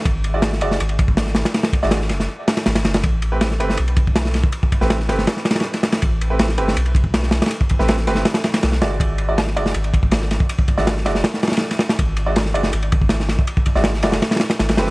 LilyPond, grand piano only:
\new Staff \with { instrumentName = "Grand piano" } { \time 4/4 \key e \minor \tempo 4 = 161 r8. <gis e' fis' d''>8 r16 <gis e' fis' d''>8 r2 | r8. <gis e' fis' d''>8 r2 r8. | r8. <a c' g' b'>8 r16 <a c' g' b'>8 r2 | r8. <a c' g' b'>8 r16 <a c' g' b'>8 r2 |
r8. <a c' g' b'>8 r16 <a c' g' b'>8 r2 | r8. <a c' g' b'>8 r16 <a c' g' b'>8 r4. <gis e' fis' d''>8~ | <gis e' fis' d''>8. <gis e' fis' d''>8 r16 <gis e' fis' d''>8 r2 | r8. <gis e' fis' d''>8 r16 <gis e' fis' d''>8 r2 |
r8. <gis e' fis' d''>8 r16 <gis e' fis' d''>8 r2 | r8. <gis e' fis' d''>8 r16 <gis e' fis' d''>8 r4. <a c' g' b'>8 | }